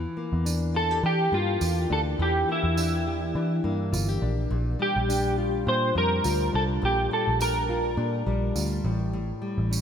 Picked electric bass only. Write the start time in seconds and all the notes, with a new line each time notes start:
0.33 E2
1.03 E3
1.32 G2
1.61 E2
1.90 D2
2.19 E2
2.63 E2
3.35 E3
3.64 G2
3.93 G1
4.22 A#1
4.51 A#1
4.96 A#1
5.67 A#2
5.95 F2
6.25 D2
6.54 C2
6.83 A#1
7.28 A#1
7.97 A#2
8.27 A#1
8.56 D2
8.84 A1
9.58 A1